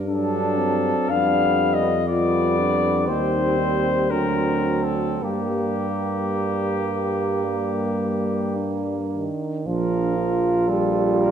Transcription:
0.00 0.92 G2 soft
0.07 1.08 F#3 soft
0.07 0.59 D4 medium
0.07 1.08 D4 medium
0.07 1.11 A4 medium
0.58 1.12 C4 medium
1.09 3.10 F2 medium
1.09 2.06 G3 medium
1.09 2.06 B3 soft
1.09 1.83 D4 medium
1.09 1.75 F5 medium
1.74 2.07 D#5 medium
2.07 3.11 B3 soft
2.07 2.61 F4 medium
2.07 3.05 D5 medium
2.12 3.08 G3 medium
2.59 3.09 D4 medium
3.06 4.12 D#2 soft
3.06 4.10 C4 soft
3.06 3.60 D#4 medium
3.06 4.12 C5 medium
3.11 4.15 G3 soft
3.58 4.11 C4 soft
4.10 5.21 D2 soft
4.10 5.23 F#3 soft
4.10 5.24 C4 soft
4.10 5.20 D4 soft
4.10 4.84 A#4 medium
4.83 5.22 A4 soft
5.21 9.29 G2 soft
5.21 8.96 G3 soft
5.21 6.21 A#3 soft
5.21 9.33 A#3 soft
5.21 8.54 G4 soft
6.34 7.47 G3 soft
7.45 8.56 A#3 soft
8.56 9.63 D4 soft
9.13 9.68 D#3 soft
9.65 11.31 A#1 soft
9.65 10.70 F3 medium
9.65 10.18 D4 soft
9.65 11.31 F4 soft
9.65 10.70 A#4 soft
10.17 11.31 F4 soft
10.68 11.31 G3 medium
10.68 11.22 A4 soft
11.20 11.31 A#4 soft

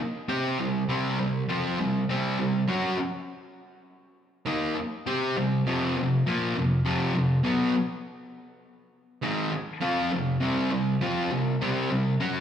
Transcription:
0.28 0.58 C4 medium
0.28 0.58 G4 medium
0.28 0.58 C5 medium
0.59 0.83 C3 medium
0.59 0.83 G3 medium
0.89 1.18 C3 medium
0.89 1.18 G3 medium
0.89 1.18 C4 loud
1.19 1.43 C3 medium
1.19 1.43 G3 medium
1.49 1.78 F3 medium
1.49 1.78 C4 medium
1.49 1.78 F4 loud
1.80 2.03 C3 medium
1.80 2.03 G3 medium
2.09 2.38 C3 medium
2.09 2.38 G3 loud
2.09 2.38 C4 loud
2.39 2.63 C3 medium
2.39 2.63 G3 medium
2.68 2.97 F#3 medium
2.68 2.97 C#4 loud
2.68 2.98 F#4 loud
2.99 muted distorted electric guitar stroke medium
4.46 4.76 D#3 medium
4.46 4.77 A#3 loud
4.46 4.77 D#4 medium
4.77 muted distorted electric guitar stroke medium
5.06 5.36 C4 medium
5.06 5.36 G4 loud
5.06 5.36 C5 medium
5.37 5.61 C3 medium
5.37 5.61 G3 medium
5.67 5.96 F2 medium
5.67 5.96 C3 medium
5.67 5.96 F3 loud
5.97 6.21 F2 medium
5.97 6.21 C3 medium
6.26 6.55 A#2 medium
6.26 6.56 F3 medium
6.26 6.56 A#3 loud
6.56 6.80 F2 medium
6.56 6.80 C3 medium
6.85 7.14 F2 medium
6.85 7.14 C3 medium
6.85 7.15 F3 loud
7.15 7.39 F2 medium
7.15 7.39 C3 medium
7.44 7.73 B2 medium
7.44 7.74 F#3 medium
7.44 7.74 B3 loud
7.75 muted distorted electric guitar stroke medium
9.23 9.52 G#2 medium
9.23 9.52 D#3 medium
9.23 9.52 G#3 loud
9.53 muted distorted electric guitar stroke medium
9.81 10.11 F3 medium
9.81 10.11 C4 medium
9.81 10.11 F4 loud
10.12 10.36 F2 medium
10.12 10.36 C3 medium
10.41 10.70 C3 medium
10.41 10.70 G3 medium
10.41 10.71 C4 loud
10.71 10.95 C3 medium
10.71 10.95 G3 medium
11.01 11.30 F3 medium
11.01 11.31 C4 loud
11.01 11.31 F4 medium
11.32 11.55 C3 medium
11.32 11.55 G3 medium
11.61 11.90 C3 loud
11.61 11.90 G3 medium
11.61 11.90 C4 loud
11.91 12.14 C3 medium
11.91 12.14 G3 medium
12.20 12.40 F#3 loud
12.20 12.40 C#4 loud
12.20 12.40 F#4 loud

